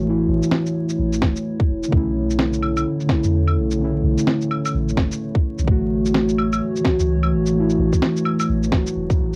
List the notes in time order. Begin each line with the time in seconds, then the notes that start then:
Already playing: A1 E3 A3 F#4 C#5
0.00 E3
0.05 A3 E4
0.09 E4
0.28 A1
0.43 shaker
0.51 snare
0.66 shaker
0.89 shaker
0.99 A1
1.13 shaker
1.22 E1, kick, snare
1.36 shaker
1.60 kick
1.69 E1
1.83 shaker
1.88 D3 A3
1.92 B1 D3 A3 C#4 E4, kick
2.30 shaker
2.39 snare
2.53 shaker
2.62 claves
2.77 claves, shaker
3.00 shaker
3.06 D3 A3, snare
3.10 C#4 E4, kick
3.23 E2, shaker
3.47 claves
3.57 B1
3.71 shaker
3.76 D3 A3
3.81 C#4 E4
4.03 B1
4.18 shaker
4.27 snare
4.41 shaker
4.51 claves
4.65 claves, shaker
4.74 A1
4.89 shaker
4.93 D3 A3
4.97 F#1 C#4 E4, kick, snare
5.12 shaker
5.35 kick
5.59 B1, shaker
5.63 E3
5.67 A1 E3 A3 F#4 C#5, kick
6.05 shaker
6.14 snare
6.29 shaker
6.38 claves
6.53 claves, shaker
6.76 shaker
6.81 E3
6.85 A3 F#4, kick, snare
7.00 C#2, shaker
7.23 claves
7.32 A1
7.46 shaker
7.51 E3 A3
7.59 E4
7.70 shaker
7.79 A1
7.93 kick, shaker
8.02 snare
8.17 shaker
8.25 claves
8.40 claves, shaker
8.49 A1
8.63 shaker
8.69 E1 E3, kick, snare
8.73 A3 F#4
8.87 shaker
8.96 E1
9.10 kick, shaker
9.19 A1